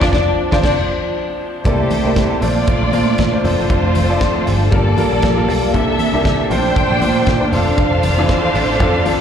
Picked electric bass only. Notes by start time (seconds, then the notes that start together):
0.01 F1
0.13 F1
0.53 F1
0.63 F1
1.65 C2
2.04 C2
2.42 A#1
2.81 A#1
2.93 A#2
3.19 A#2
3.44 F1
3.58 E1
3.70 F1
3.95 F1
4.47 G1
4.72 G1
5.12 A#1
5.23 A#1
5.48 B1
5.74 C2
6.14 C2
6.50 A#1
6.90 A#1
7.02 A#2
7.27 A#2
7.52 F1
7.67 E1
7.78 F1
8.03 F1
8.54 A1
8.80 F2